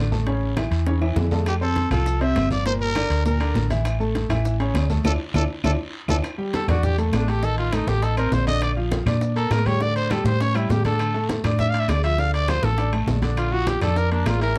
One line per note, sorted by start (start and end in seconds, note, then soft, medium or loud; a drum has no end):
0.00 0.66 A1 medium
0.11 0.24 A3 medium
0.11 0.24 A4 medium
0.11 0.24 A5 medium
0.11 high conga medium
0.11 short guiro medium
0.27 0.51 C#3 medium
0.27 0.51 C#4 medium
0.27 0.51 C#5 medium
0.27 high bongo medium
0.27 high conga soft
0.27 high timbale medium
0.27 long guiro medium
0.42 high conga soft
0.57 0.81 E3 medium
0.57 0.81 E4 medium
0.57 0.81 E5 medium
0.57 high bongo medium
0.57 high conga loud
0.57 high timbale medium
0.57 short guiro medium
0.57 claves medium
0.71 1.13 E2 medium
0.71 high bongo soft
0.71 high timbale medium
0.71 short guiro medium
0.86 0.99 C#3 medium
0.86 0.99 C#4 medium
0.86 0.99 C#5 medium
0.86 high bongo medium
0.86 high conga soft
0.86 high timbale medium
0.86 long guiro medium
1.01 1.26 E3 medium
1.01 1.26 E4 medium
1.01 1.26 E5 medium
1.01 high bongo soft
1.01 high conga soft
1.01 high timbale medium
1.01 claves medium
1.16 1.85 F2 medium
1.16 high bongo medium
1.16 low bongo medium
1.16 high conga medium
1.16 low timbale medium
1.16 short guiro medium
1.31 1.56 A3 medium
1.31 1.56 A4 medium
1.31 1.56 A5 medium
1.31 high bongo soft
1.31 high conga medium
1.31 low timbale loud
1.31 short guiro medium
1.46 1.54 G4 medium
1.46 high bongo medium
1.46 high conga soft
1.46 high timbale medium
1.46 long guiro medium
1.46 claves medium
1.46 maracas medium
1.61 1.85 C4 medium
1.61 1.90 A4 loud
1.61 1.86 C5 medium
1.61 1.86 C6 medium
1.61 high conga soft
1.61 maracas soft
1.76 high bongo medium
1.76 high conga medium
1.76 high timbale medium
1.76 short guiro medium
1.76 maracas soft
1.90 2.32 C2 loud
1.90 2.15 F3 medium
1.90 2.16 F4 medium
1.90 2.23 A4 medium
1.90 2.16 F5 medium
1.90 high conga soft
1.90 low conga medium
1.90 high timbale medium
1.90 short guiro medium
1.90 claves medium
1.90 maracas medium
2.06 high bongo medium
2.06 high conga soft
2.06 long guiro medium
2.06 maracas medium
2.21 2.45 C3 medium
2.21 2.45 C4 medium
2.21 2.46 C5 medium
2.21 2.51 E5 medium
2.21 high conga soft
2.21 high timbale medium
2.21 maracas soft
2.35 3.05 G1 loud
2.35 high bongo medium
2.35 low bongo medium
2.35 high conga medium
2.35 high timbale medium
2.35 short guiro medium
2.35 claves medium
2.35 maracas soft
2.51 2.63 F3 medium
2.51 2.63 F4 medium
2.51 2.65 D5 medium
2.51 2.63 F5 medium
2.51 high conga medium
2.51 short guiro medium
2.51 maracas medium
2.66 2.90 A#2 medium
2.66 2.90 A#3 medium
2.66 2.91 A#4 medium
2.66 2.73 C5 loud
2.66 high bongo medium
2.66 high timbale medium
2.66 long guiro medium
2.66 maracas medium
2.80 3.23 A#4 loud
2.80 high conga soft
2.80 maracas soft
2.95 3.20 D3 medium
2.95 3.20 D4 medium
2.95 3.20 D5 medium
2.95 high bongo medium
2.95 high conga medium
2.95 high timbale medium
2.95 short guiro medium
2.95 claves medium
2.95 maracas soft
3.10 3.52 D2 medium
3.10 high bongo soft
3.10 high timbale medium
3.10 short guiro medium
3.10 maracas medium
3.25 3.38 A#2 medium
3.25 3.38 A#3 medium
3.25 3.67 A#4 medium
3.25 3.38 A#4 medium
3.25 high bongo medium
3.25 high conga soft
3.25 long guiro medium
3.25 maracas medium
3.40 3.65 D3 medium
3.40 3.65 D4 medium
3.40 3.65 D5 medium
3.40 high bongo soft
3.40 high conga soft
3.40 high timbale medium
3.40 claves medium
3.40 maracas soft
3.55 4.24 A1 medium
3.55 high bongo medium
3.55 low bongo medium
3.55 high conga medium
3.55 short guiro medium
3.55 maracas soft
3.70 3.95 E3 medium
3.70 3.95 E4 medium
3.70 3.95 E5 medium
3.70 high bongo soft
3.70 high conga medium
3.70 high timbale medium
3.70 short guiro medium
3.70 maracas medium
3.85 high bongo medium
3.85 high conga soft
3.85 high timbale medium
3.85 long guiro medium
3.85 claves medium
3.85 maracas medium
4.00 4.24 A3 medium
4.00 4.25 A4 medium
4.00 4.25 A5 medium
4.00 high conga soft
4.00 maracas soft
4.15 high bongo medium
4.15 high conga medium
4.15 high timbale medium
4.15 short guiro medium
4.15 maracas soft
4.29 4.71 A1 medium
4.29 4.54 E3 medium
4.29 4.54 E4 medium
4.29 4.54 E5 medium
4.29 high conga soft
4.29 low conga medium
4.29 high timbale loud
4.29 short guiro medium
4.29 claves medium
4.29 maracas medium
4.45 high bongo medium
4.45 long guiro medium
4.45 maracas medium
4.60 4.84 C#3 medium
4.60 4.84 C#4 medium
4.60 4.85 C#5 medium
4.60 high conga soft
4.60 high timbale medium
4.60 maracas soft
4.74 5.02 D2 medium
4.74 high bongo medium
4.74 low bongo medium
4.74 high conga medium
4.74 high timbale medium
4.74 low timbale medium
4.74 short guiro medium
4.74 claves medium
4.74 maracas soft
4.90 5.02 A3 medium
4.90 5.02 A4 medium
4.90 5.02 A5 medium
4.90 high conga medium
4.90 short guiro medium
4.90 maracas medium
5.04 5.15 D2 medium
5.04 5.14 D4 medium
5.04 5.14 E4 medium
5.04 5.14 F4 medium
5.04 5.12 A4 loud
5.04 low bongo loud
5.04 high conga loud
5.04 high timbale loud
5.04 long guiro medium
5.04 claves loud
5.04 maracas medium
5.34 5.45 D2 loud
5.34 5.44 D4 loud
5.34 5.44 E4 medium
5.34 5.44 F4 medium
5.34 5.42 A4 medium
5.34 low bongo medium
5.34 high conga medium
5.34 high timbale medium
5.34 long guiro medium
5.34 claves medium
5.34 maracas medium
5.64 5.75 D2 loud
5.64 5.74 D4 loud
5.64 5.74 E4 medium
5.64 5.74 F4 loud
5.64 5.71 A4 medium
5.64 low bongo loud
5.64 high conga loud
5.64 high timbale loud
5.64 long guiro medium
5.64 claves loud
5.64 maracas loud
6.08 6.20 D2 medium
6.08 6.18 D4 medium
6.08 6.18 E4 medium
6.08 6.18 F4 medium
6.08 6.17 A4 loud
6.08 low bongo loud
6.08 high conga loud
6.08 high timbale loud
6.08 long guiro loud
6.08 claves medium
6.08 maracas medium
6.24 high bongo medium
6.24 high conga soft
6.24 high timbale medium
6.24 long guiro medium
6.24 claves medium
6.24 maracas medium
6.38 6.63 G3 medium
6.38 6.63 G4 medium
6.38 6.63 G5 medium
6.38 high conga soft
6.53 6.68 A4 medium
6.53 high bongo medium
6.53 high conga medium
6.53 high timbale medium
6.53 low timbale medium
6.53 short guiro medium
6.53 maracas medium
6.68 7.10 E2 medium
6.68 6.93 D4 medium
6.68 6.86 F#4 medium
6.68 6.93 D5 medium
6.68 6.93 D6 medium
6.68 high conga loud
6.68 low conga medium
6.68 high timbale medium
6.68 short guiro medium
6.68 claves medium
6.68 maracas soft
6.83 6.99 G4 loud
6.83 high bongo medium
6.83 high conga soft
6.83 low conga medium
6.83 long guiro medium
6.83 maracas medium
6.98 7.22 A3 medium
6.98 7.16 A#3 soft
6.98 7.23 A4 medium
6.98 7.23 A5 medium
6.98 high conga soft
6.98 high timbale medium
6.98 maracas medium
7.12 7.82 A1 medium
7.12 7.31 D4 medium
7.12 high bongo medium
7.12 low bongo medium
7.12 high timbale medium
7.12 low timbale medium
7.12 short guiro medium
7.12 claves medium
7.12 maracas medium
7.27 7.40 A3 medium
7.27 7.46 G4 medium
7.27 7.40 A4 medium
7.27 7.40 A5 medium
7.27 high timbale medium
7.27 short guiro medium
7.27 maracas soft
7.42 7.67 D#3 medium
7.42 7.67 D#4 medium
7.42 7.58 A4 loud
7.42 7.67 D#5 medium
7.42 high bongo medium
7.42 high conga soft
7.42 long guiro medium
7.42 maracas medium
7.58 7.76 F4 medium
7.58 high conga soft
7.58 high timbale medium
7.72 7.97 A3 medium
7.72 7.90 D#4 medium
7.72 7.97 A4 medium
7.72 7.97 A5 medium
7.72 high bongo medium
7.72 high conga loud
7.72 high timbale medium
7.72 low timbale medium
7.72 short guiro medium
7.72 claves medium
7.72 maracas medium
7.87 8.29 A1 medium
7.87 8.05 G4 medium
7.87 high bongo soft
7.87 high conga loud
7.87 short guiro medium
7.87 maracas soft
8.02 8.14 D#4 medium
8.02 8.18 A4 loud
8.02 8.15 D#5 medium
8.02 8.15 D#6 medium
8.02 high bongo medium
8.02 high conga soft
8.02 high timbale medium
8.02 long guiro medium
8.02 maracas medium
8.17 8.41 C4 medium
8.17 8.35 A#4 medium
8.17 8.42 C5 medium
8.17 8.42 C6 medium
8.17 high bongo soft
8.17 high conga soft
8.17 high timbale medium
8.17 claves medium
8.17 maracas medium
8.31 9.01 A#1 medium
8.31 8.47 C5 medium
8.31 high bongo medium
8.31 low bongo medium
8.31 high conga medium
8.31 low timbale medium
8.31 short guiro medium
8.31 maracas medium
8.47 8.71 D3 medium
8.47 8.71 D4 medium
8.47 8.72 D5 medium
8.47 8.61 D#5 loud
8.47 high bongo soft
8.47 high conga medium
8.47 high timbale medium
8.47 short guiro medium
8.62 8.72 D5 medium
8.62 high bongo medium
8.62 high conga soft
8.62 high timbale medium
8.62 long guiro medium
8.62 claves medium
8.62 maracas medium
8.77 9.01 F3 medium
8.77 9.01 F4 medium
8.77 9.01 F5 medium
8.77 high conga soft
8.91 high bongo medium
8.91 high conga loud
8.91 high timbale medium
8.91 low timbale medium
8.91 short guiro medium
8.91 maracas medium
9.06 9.48 A#2 medium
9.06 9.31 D4 medium
9.06 9.31 D5 medium
9.06 9.31 D6 medium
9.06 high conga medium
9.06 low conga medium
9.06 high timbale loud
9.06 short guiro medium
9.06 claves medium
9.06 maracas soft
9.21 high bongo medium
9.21 high conga soft
9.21 long guiro medium
9.21 maracas medium
9.36 9.61 A#3 medium
9.36 9.54 A4 medium
9.36 9.61 A#4 medium
9.36 9.61 A#5 medium
9.36 high conga soft
9.36 high timbale medium
9.36 maracas medium
9.50 10.20 A2 medium
9.50 9.68 A#4 medium
9.50 high bongo medium
9.50 low bongo medium
9.50 high conga soft
9.50 high timbale loud
9.50 low timbale medium
9.50 short guiro medium
9.50 claves medium
9.50 maracas medium
9.66 9.78 G3 medium
9.66 9.78 G4 medium
9.66 9.84 C#5 loud
9.66 9.78 G5 medium
9.66 high conga medium
9.66 high timbale medium
9.66 short guiro medium
9.66 maracas soft
9.81 10.05 D3 medium
9.81 10.05 D4 medium
9.81 10.05 D5 medium
9.81 9.96 D5 loud
9.81 high bongo medium
9.81 high conga soft
9.81 long guiro medium
9.81 maracas medium
9.96 10.13 C5 loud
9.96 high conga soft
9.96 high timbale medium
9.96 maracas medium
10.10 10.35 G3 medium
10.10 10.35 G4 medium
10.10 10.25 A4 medium
10.10 10.35 G5 medium
10.10 high bongo medium
10.10 high conga medium
10.10 high timbale medium
10.10 low timbale medium
10.10 short guiro medium
10.10 claves medium
10.10 maracas medium
10.24 10.66 A2 medium
10.24 10.43 C5 loud
10.24 high bongo soft
10.24 high conga loud
10.24 short guiro medium
10.24 maracas soft
10.40 10.52 C#4 medium
10.40 10.53 C#5 medium
10.40 10.57 C#5 loud
10.40 10.53 C#6 medium
10.40 high bongo medium
10.40 high conga soft
10.40 high timbale medium
10.40 long guiro medium
10.40 maracas medium
10.55 10.79 G3 medium
10.55 10.72 E4 medium
10.55 10.80 G4 medium
10.55 10.80 G5 medium
10.55 high bongo soft
10.55 high conga soft
10.55 high timbale medium
10.55 claves medium
10.55 maracas medium
10.69 11.38 A2 medium
10.69 10.85 G4 medium
10.69 high bongo medium
10.69 low bongo medium
10.69 high conga medium
10.69 low timbale medium
10.69 short guiro medium
10.69 maracas medium
10.84 11.09 D3 medium
10.84 11.09 D4 medium
10.84 11.27 A4 medium
10.84 11.10 D5 medium
10.84 high bongo soft
10.84 high conga medium
10.84 high timbale medium
10.84 short guiro medium
10.84 maracas soft
10.99 high bongo medium
10.99 high conga soft
10.99 high timbale medium
10.99 long guiro medium
10.99 claves medium
10.99 maracas medium
11.14 11.39 A3 medium
11.14 11.39 A4 medium
11.14 11.39 A5 medium
11.14 high conga soft
11.29 high bongo medium
11.29 high conga medium
11.29 high timbale medium
11.29 low timbale medium
11.29 short guiro medium
11.29 maracas medium
11.44 11.85 A2 medium
11.44 11.69 D4 medium
11.44 11.69 D5 medium
11.44 11.69 D6 medium
11.44 high conga medium
11.44 low conga medium
11.44 high timbale loud
11.44 short guiro medium
11.44 claves medium
11.44 maracas soft
11.59 11.71 E5 medium
11.59 high bongo medium
11.59 high conga soft
11.59 low conga medium
11.59 long guiro medium
11.59 maracas medium
11.70 11.81 F5 loud
11.74 11.98 D4 medium
11.74 11.98 D5 medium
11.74 11.98 D6 medium
11.74 high conga soft
11.74 high timbale medium
11.80 11.91 E5 medium
11.88 12.57 D2 loud
11.88 12.03 D5 medium
11.88 high bongo medium
11.88 low bongo medium
11.88 high timbale medium
11.88 low timbale medium
11.88 short guiro medium
11.88 claves medium
11.88 maracas medium
12.03 12.16 F3 medium
12.03 12.16 F4 medium
12.03 12.21 E5 loud
12.03 12.16 F5 medium
12.03 high timbale medium
12.03 short guiro medium
12.03 maracas soft
12.18 12.43 D3 medium
12.18 12.43 D4 medium
12.18 12.43 D5 medium
12.18 12.34 F5 loud
12.18 high bongo medium
12.18 high conga soft
12.18 long guiro medium
12.18 maracas medium
12.33 12.51 D5 loud
12.33 high conga soft
12.33 high timbale medium
12.33 maracas medium
12.48 12.73 F3 medium
12.48 12.73 F4 medium
12.48 12.66 C5 loud
12.48 12.73 F5 medium
12.48 high bongo medium
12.48 high conga loud
12.48 high timbale loud
12.48 low timbale medium
12.48 short guiro medium
12.48 claves medium
12.48 maracas medium
12.62 13.04 A1 medium
12.62 12.93 A4 medium
12.62 high bongo soft
12.62 high conga loud
12.62 short guiro medium
12.62 maracas soft
12.78 12.90 D4 medium
12.78 12.90 D5 medium
12.78 12.90 D6 medium
12.78 high bongo medium
12.78 high timbale medium
12.78 long guiro medium
12.78 maracas medium
12.93 13.17 A3 medium
12.93 13.17 A4 medium
12.93 13.17 A5 medium
12.93 high bongo soft
12.93 high conga soft
12.93 high timbale medium
12.93 claves medium
13.07 13.76 A#1 medium
13.07 high bongo medium
13.07 low bongo medium
13.07 high conga medium
13.07 low timbale medium
13.07 short guiro medium
13.07 maracas medium
13.22 13.47 D3 medium
13.22 13.47 D4 medium
13.22 13.47 D5 medium
13.22 high bongo soft
13.22 high conga loud
13.22 high timbale medium
13.22 short guiro medium
13.22 maracas soft
13.37 13.54 F4 medium
13.37 high bongo medium
13.37 high conga soft
13.37 high timbale loud
13.37 long guiro medium
13.37 claves medium
13.37 maracas medium
13.52 13.76 F3 medium
13.52 13.76 F4 medium
13.52 13.69 F#4 loud
13.52 13.77 F5 medium
13.52 high conga soft
13.67 13.82 G4 medium
13.67 high bongo medium
13.67 high conga loud
13.67 high timbale medium
13.67 low timbale medium
13.67 short guiro medium
13.67 maracas medium
13.81 14.23 F2 loud
13.81 14.06 D4 medium
13.81 13.99 A4 loud
13.81 14.06 D5 medium
13.81 14.06 D6 medium
13.81 high conga loud
13.81 low conga loud
13.81 high timbale loud
13.81 short guiro medium
13.81 claves medium
13.81 maracas soft
13.96 14.12 A#4 loud
13.96 high bongo medium
13.96 high conga soft
13.96 long guiro medium
13.96 maracas medium
14.11 14.36 A#3 medium
14.11 14.29 D4 medium
14.11 14.36 A#4 medium
14.11 14.36 A#5 medium
14.11 high conga soft
14.11 high timbale medium
14.26 14.58 A1 medium
14.26 14.41 F4 medium
14.26 high bongo medium
14.26 low bongo medium
14.26 high conga soft
14.26 high timbale loud
14.26 low timbale medium
14.26 short guiro medium
14.26 claves medium
14.26 maracas medium
14.41 14.53 E3 medium
14.41 14.53 E4 medium
14.41 14.58 A#4 loud
14.41 14.53 E5 medium
14.41 high timbale medium
14.41 short guiro medium
14.41 maracas soft